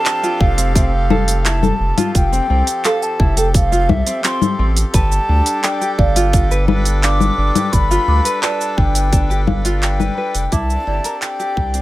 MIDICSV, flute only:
0, 0, Header, 1, 2, 480
1, 0, Start_track
1, 0, Tempo, 697674
1, 1480, Time_signature, 4, 2, 24, 8
1, 8131, End_track
2, 0, Start_track
2, 0, Title_t, "Flute"
2, 0, Program_c, 0, 73
2, 0, Note_on_c, 0, 81, 121
2, 281, Note_on_c, 0, 77, 99
2, 292, Note_off_c, 0, 81, 0
2, 519, Note_off_c, 0, 77, 0
2, 523, Note_on_c, 0, 77, 99
2, 974, Note_off_c, 0, 77, 0
2, 1000, Note_on_c, 0, 81, 99
2, 1452, Note_off_c, 0, 81, 0
2, 1484, Note_on_c, 0, 79, 104
2, 1962, Note_on_c, 0, 77, 89
2, 1972, Note_off_c, 0, 79, 0
2, 2084, Note_on_c, 0, 81, 83
2, 2095, Note_off_c, 0, 77, 0
2, 2322, Note_on_c, 0, 79, 77
2, 2332, Note_off_c, 0, 81, 0
2, 2441, Note_off_c, 0, 79, 0
2, 2444, Note_on_c, 0, 77, 95
2, 2681, Note_on_c, 0, 76, 89
2, 2692, Note_off_c, 0, 77, 0
2, 2920, Note_off_c, 0, 76, 0
2, 2923, Note_on_c, 0, 84, 96
2, 3195, Note_off_c, 0, 84, 0
2, 3399, Note_on_c, 0, 81, 100
2, 3881, Note_on_c, 0, 79, 83
2, 3891, Note_off_c, 0, 81, 0
2, 4115, Note_off_c, 0, 79, 0
2, 4119, Note_on_c, 0, 77, 95
2, 4572, Note_off_c, 0, 77, 0
2, 4841, Note_on_c, 0, 86, 114
2, 5315, Note_on_c, 0, 83, 114
2, 5326, Note_off_c, 0, 86, 0
2, 5796, Note_on_c, 0, 81, 94
2, 5806, Note_off_c, 0, 83, 0
2, 6035, Note_on_c, 0, 79, 99
2, 6046, Note_off_c, 0, 81, 0
2, 6517, Note_off_c, 0, 79, 0
2, 6762, Note_on_c, 0, 79, 95
2, 7242, Note_on_c, 0, 81, 102
2, 7252, Note_off_c, 0, 79, 0
2, 7718, Note_off_c, 0, 81, 0
2, 7722, Note_on_c, 0, 79, 108
2, 8131, Note_off_c, 0, 79, 0
2, 8131, End_track
0, 0, End_of_file